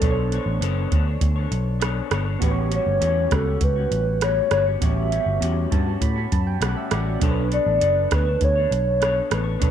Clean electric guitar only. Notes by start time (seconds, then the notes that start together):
0.02 B3 D4 A4 C#5
0.31 B3 D4 A4 C#5
0.61 B3 D4 A4 C#5
0.91 B3 D4 A4 C#5
1.07 D4 A4 C#5
1.36 D4 A4 C#5
1.80 B3 D4 A4 C#5
2.10 B3 D4 A4 C#5
2.26 D4 A4 C#5
2.40 A2 G3 C#4 F#4
2.70 A2 G3 C#4 F#4
3.00 A2 G3 C#4 F#4
3.30 A2 G3 C#4 F#4
3.45 C#4 F#4
3.49 G3
3.76 G3 C#4 F#4
4.22 A2 G3 C#4 F#4
4.51 A2 G3 C#4 F#4
4.66 G3 C#4 F#4
4.81 A2 G3 C#4 F#4
5.10 A2 G3 C#4 F#4
5.41 A2 G3 C#4 F#4
5.70 A2 G3 C#4 F#4
5.85 C#4 F#4
5.90 G3
6.16 C#4 F#4
6.61 A2 G3 C#4 F#4
6.90 A2 G3 C#4 F#4
7.06 G3 C#4 F#4
7.21 B3 D4 A4 C#5
7.51 B3 D4 A4
7.81 B3 D4 A4
8.10 B3 D4 A4 C#5
8.25 D4 A4 C#5
8.55 D4 A4 C#5
9.00 B3 D4 A4 C#5
9.30 B3 D4 A4 C#5
9.44 D4 A4 C#5
9.59 B3 D4 A4 C#5